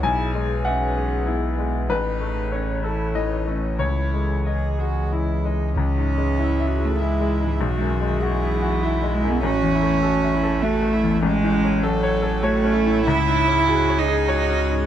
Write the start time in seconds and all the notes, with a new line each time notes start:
Already playing: E3 G#4
0.03 B1 E4 B4 G#5
0.34 G#3 D#4
0.65 C#4 E5 F#5
0.96 G#4
1.26 B3 E4
1.58 G#3
1.89 A1 D#4 A4 B4 C#5
2.20 A3
2.52 C#4 C#5
2.84 E4 A4
3.14 E3 D#4 D#5
3.47 A3 C#4
3.79 C#2 E3 E4 G#4 C#5 D#5
4.14 G#3
4.46 G#4 D#5
4.79 F#4 G#4
5.12 E4
5.45 G#3 D#4
5.76 C#2 E3 C#4 G#4 E5
5.98 G#2
6.18 G#3
6.38 E4
6.60 E5
6.67 F#4
6.79 E4
6.85 A3
6.99 G#3 E4 E5
7.20 G#3
7.40 G#2
7.46 E3
7.60 B1 F#3 F#4
7.77 F#2 G#3
7.93 F#3
8.01 G#3
8.08 D#3
8.21 E3 F#4 G#4
8.42 E5
8.62 F#4
8.83 E4 E5
9.02 G#3
9.14 G#3
9.24 F#2
9.31 B3
9.43 A1 E3 C#4 F#4 A5
9.63 E2
9.75 E4
9.83 A3
10.03 F#4 A4
10.24 E5
10.35 E4
10.43 A4
10.62 A3 F#4 E5
10.82 A3
10.93 E4
11.04 E2
11.23 A1 F#3 G#3 C#4 C#5
11.44 A2
11.64 C#4
11.83 F#3 A4
12.03 C#5
12.22 A4
12.43 A3 F#4 C#5
12.64 C#4
12.73 E4
12.86 A2
13.06 C#2 G#3 E4 G#4
13.28 G#2
13.48 C#4
13.68 F#4 G#4
13.89 C#5
13.99 D#4 G#4
14.08 G#4
14.28 F#4 C#5
14.49 C#4
14.69 G#2